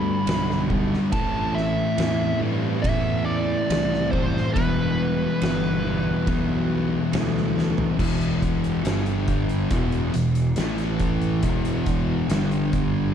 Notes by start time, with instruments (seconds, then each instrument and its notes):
Already playing: fingered electric bass D2, distorted electric guitar G2 D3 G3 B3 D4, lead electric guitar B5
0.27 fingered electric bass B1, distorted electric guitar G2 D3 G3 B3 D4, snare, ride bell
0.51 snare
0.70 distorted electric guitar G2 D3 G3 B3 D4, kick
0.94 snare
1.12 fingered electric bass A1, distorted electric guitar A2 E3 A3 C4 E4, lead electric guitar A5, kick, ride bell
1.55 lead electric guitar E5, snare
1.98 fingered electric bass E2, distorted electric guitar A2 E3 A3 C4 E4, snare, ride bell
2.41 fingered electric bass G2, distorted electric guitar A2 E3 A3 C4 E4
2.82 fingered electric bass E2, distorted electric guitar A2 E3 A3 C4 E4, lead electric guitar E5, kick, ride bell
3.25 lead electric guitar D5
3.69 fingered electric bass C2, distorted electric guitar A2 E3 A3 C4 E4, snare, ride bell
3.94 snare
4.11 distorted electric guitar A2 E3 A3 C4 E4, lead electric guitar C5, kick
4.37 snare
4.54 fingered electric bass E1, distorted electric guitar E2 B2 E3 G3 B3 E4, lead electric guitar B4, kick, ride bell
5.42 fingered electric bass G1, distorted electric guitar E3 G3 B3 E4, snare, ride bell
5.84 distorted electric guitar E2 B2 E3 G3 B3 E4
6.27 fingered electric bass B1, distorted electric guitar E3 G3 B3 E4, kick, ride bell
7.12 fingered electric bass D2, distorted electric guitar E3 G3 B3 E4, snare, ride bell
7.37 snare
7.56 distorted electric guitar E2 B2 E3 G3 B3 E4, snare
7.78 floor tom
7.99 fingered electric bass E1, distorted electric guitar E2 B2 E3, kick, crash
8.21 closed hi-hat
8.42 kick, closed hi-hat
8.64 closed hi-hat
8.85 fingered electric bass G1, distorted electric guitar G2 D3 G3, snare, closed hi-hat
9.06 closed hi-hat
9.28 kick, closed hi-hat
9.49 closed hi-hat
9.71 fingered electric bass E1, distorted electric guitar E2 B2 E3, kick, closed hi-hat
9.92 closed hi-hat
10.14 fingered electric bass E1, distorted electric guitar E2 B2, closed hi-hat
10.35 closed hi-hat
10.56 fingered electric bass A1, distorted electric guitar A2 E3 A3, snare, closed hi-hat
10.78 snare, closed hi-hat
10.99 kick, closed hi-hat
11.22 closed hi-hat
11.43 fingered electric bass E1, distorted electric guitar E2 B2 E3, kick, closed hi-hat
11.65 closed hi-hat
11.86 kick, closed hi-hat
12.29 fingered electric bass G1, distorted electric guitar G2 D3 G3, snare, closed hi-hat
12.51 closed hi-hat
12.73 kick, closed hi-hat